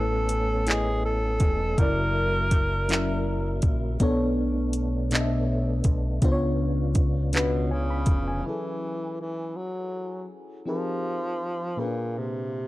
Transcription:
0.00 1.37 A1 medium
0.00 0.56 A3 medium
0.00 1.76 A3 medium
0.00 1.76 B3 medium
0.00 1.76 C#4 medium
0.00 0.57 E4 medium
0.00 0.70 A4 loud
0.00 0.57 B4 medium
0.00 0.58 C#5 medium
0.00 0.57 G#5 medium
0.29 closed hi-hat medium
0.66 1.67 A3 medium
0.66 1.68 E4 medium
0.66 1.05 G#4 loud
0.66 1.68 B4 medium
0.66 1.69 D#5 medium
0.66 1.68 G#5 medium
0.66 clap loud
0.66 closed hi-hat medium
1.05 1.80 A4 loud
1.40 1.74 E1 loud
1.40 kick medium
1.40 closed hi-hat medium
1.77 3.59 F#1 loud
1.77 2.79 C#3 medium
1.77 3.98 F#3 medium
1.77 2.79 F#3 medium
1.77 3.98 A#3 medium
1.77 3.97 E4 medium
1.77 2.80 E4 medium
1.77 3.64 A#4 loud
1.77 2.80 A#4 medium
1.77 kick loud
1.77 closed hi-hat medium
1.81 2.80 D5 medium
2.51 kick medium
2.51 closed hi-hat medium
2.89 3.90 F#3 medium
2.89 3.90 C#4 medium
2.89 3.90 E4 medium
2.89 3.91 A#4 medium
2.89 3.91 E5 medium
2.89 clap loud
2.89 closed hi-hat medium
3.62 3.97 A#1 loud
3.62 kick loud
3.62 closed hi-hat medium
4.00 5.82 B1 loud
4.00 5.01 B2 medium
4.00 6.20 A3 medium
4.00 8.40 B3 medium
4.00 5.01 B3 loud
4.00 6.20 D4 medium
4.00 5.02 D4 loud
4.00 5.02 A4 loud
4.00 5.02 C#5 loud
4.00 kick loud
4.00 closed hi-hat medium
4.73 closed hi-hat medium
5.11 6.12 B2 medium
5.11 6.12 B3 medium
5.11 6.13 D4 medium
5.11 6.13 A4 medium
5.11 5.19 D#5 medium
5.11 clap loud
5.11 closed hi-hat medium
5.21 6.17 E5 medium
5.84 6.19 B1 medium
5.84 kick loud
5.84 closed hi-hat medium
6.22 8.04 C#2 loud
6.22 8.42 C#3 medium
6.22 7.23 C#3 loud
6.22 7.23 B3 medium
6.22 8.42 D4 medium
6.22 7.24 D4 medium
6.22 8.42 F4 medium
6.22 7.24 F4 medium
6.22 6.30 C5 medium
6.22 kick loud
6.22 closed hi-hat medium
6.32 7.28 C#5 loud
6.95 kick loud
6.95 closed hi-hat medium
7.33 7.74 B2 medium
7.33 8.34 C#3 medium
7.33 8.34 B3 medium
7.33 8.35 D4 medium
7.33 8.35 F4 medium
7.33 8.35 B4 medium
7.33 clap loud
7.33 closed hi-hat medium
7.71 8.47 C#3 medium
7.71 7.88 G#5 medium
7.90 8.25 B5 medium
8.06 8.41 F1 medium
8.06 kick loud
8.06 closed hi-hat medium
8.28 8.62 G#5 medium
8.42 9.19 E3 medium
8.42 10.62 F#3 medium
8.42 10.62 C#4 soft
8.42 10.63 E4 soft
8.47 10.64 G#4 soft
8.47 10.65 A4 medium
9.20 9.58 E3 medium
9.57 10.30 F#3 medium
10.66 11.77 F3 medium
10.66 11.81 F3 medium
10.66 11.78 C4 soft
10.66 11.78 D#4 soft
10.66 11.78 G4 soft
10.66 11.78 G#4 soft
10.66 11.79 A#4 medium
11.77 12.68 A#2 medium
11.77 12.19 A#2 medium
11.77 12.68 A#3 soft
11.77 11.85 C#4 soft
11.77 12.68 G#4 soft
11.77 12.68 B4 medium
11.85 12.68 D4 soft
12.18 12.68 C3 medium

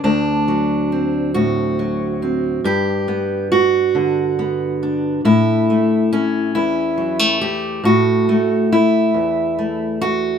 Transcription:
0.04 2.64 D2 medium
0.04 1.34 D4 medium
0.48 1.78 F#3 soft
0.92 2.21 C4 soft
1.34 2.65 A2 medium
1.34 2.65 F#4 medium
1.79 2.65 F#3 soft
2.22 2.60 C4 soft
2.64 5.20 G2 medium
2.64 3.51 G4 medium
3.08 4.38 B3 soft
3.52 5.25 F#4 loud
3.95 5.20 D3 medium
4.39 5.20 B3 soft
4.83 5.20 D4 soft
5.25 6.55 A2 medium
5.25 6.54 E4 medium
5.70 6.97 A3 soft
6.13 7.42 C#4 medium
6.55 7.80 E2 soft
6.55 7.41 E4 medium
6.97 7.19 F#3 soft
7.19 7.85 A3 soft
7.41 7.85 G4 medium
7.84 9.14 A2 medium
7.84 8.72 F#4 loud
8.29 9.57 A3 medium
8.72 10.01 E4 medium
9.14 10.38 E2 medium
9.59 10.38 A3 soft
10.01 10.38 F#4 loud

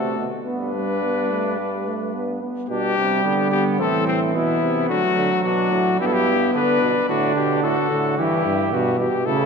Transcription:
0.00 0.19 C3 medium
0.00 0.28 A3 medium
0.00 0.17 F#4 medium
0.00 0.27 A4 medium
0.19 0.32 B2 medium
0.46 2.38 G2 medium
0.46 0.73 B3 medium
0.46 2.38 D4 medium
0.46 2.38 B4 medium
0.74 1.05 G3 soft
1.03 1.32 B3 medium
1.31 1.60 A3 soft
1.58 1.89 G3 medium
1.87 2.17 A3 medium
2.15 2.42 B3 medium
2.42 2.69 B3 medium
2.69 2.95 B2 medium
2.69 3.82 G3 medium
2.69 3.21 D4 medium
2.69 3.48 G4 medium
2.97 3.24 C3 medium
3.23 3.81 D3 medium
3.23 3.50 B3 medium
3.51 3.79 B3 medium
3.51 3.64 G4 medium
3.79 4.36 A2 medium
3.79 4.90 E3 medium
3.79 4.33 C4 medium
3.79 4.07 A4 medium
4.07 4.20 C4 medium
4.34 4.61 B2 medium
4.34 4.92 B3 medium
4.34 4.88 E4 medium
4.62 4.89 C3 medium
4.89 5.02 D3 medium
4.89 6.02 F#3 medium
4.89 5.44 A3 medium
4.89 5.43 F#4 medium
5.17 5.29 D3 medium
5.44 5.73 B2 medium
5.44 5.99 D4 medium
5.44 5.98 F#4 medium
5.72 5.99 A2 medium
5.99 6.53 G2 medium
5.99 6.92 B3 medium
5.99 6.54 E4 medium
5.99 6.08 G4 medium
6.06 6.15 A4 medium
6.13 6.53 G4 medium
6.54 6.81 D3 medium
6.54 7.08 D4 medium
6.54 7.08 B4 medium
6.82 6.94 B2 medium
7.08 7.35 A2 medium
7.08 7.89 D3 medium
7.08 7.66 D4 medium
7.08 7.35 F#4 medium
7.36 7.62 B2 medium
7.36 7.63 G4 medium
7.63 7.75 A2 medium
7.63 8.20 F#4 medium
7.63 8.16 A4 medium
7.90 8.19 A2 medium
7.90 8.17 D3 medium
8.17 8.71 G2 medium
8.17 8.45 E3 medium
8.17 8.71 E4 medium
8.17 9.00 G4 medium
8.45 8.75 G2 medium
8.72 8.98 G2 medium
8.72 9.08 B2 medium
8.72 8.99 F#4 medium
8.99 9.25 B2 medium
8.99 9.27 G4 medium
9.26 9.46 A2 medium
9.26 9.46 C#3 loud
9.26 9.46 E4 medium
9.26 9.46 A4 medium

